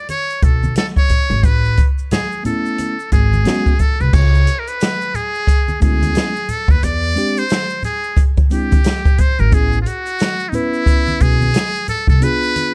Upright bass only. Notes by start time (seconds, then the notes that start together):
0.43 B1
1.30 G#1
1.43 A1
3.12 G#1
4.00 C2
4.13 C#2
5.82 D2
6.68 D#2
6.83 E2
9.39 G#1
9.52 A1
11.21 B1
12.08 C2